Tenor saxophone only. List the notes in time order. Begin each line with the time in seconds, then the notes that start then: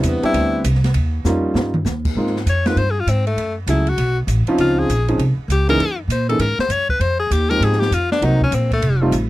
0.08 B3
0.25 E4
2.49 C#5
2.67 B4
2.78 C5
2.91 G#4
3.00 F4
3.10 C4
3.27 A3
3.70 E4
3.89 F#4
4.60 F4
4.78 G#4
5.52 G4
5.70 A#4
6.12 C5
6.29 A4
6.41 A#4
6.60 C5
6.72 C#5
6.90 B4
7.01 C5
7.20 G#4
7.33 G4
7.50 A#4
7.64 G#4
7.80 G4
7.94 F4
8.12 D4
8.25 D#4
8.44 C#4
8.55 C4
8.73 A3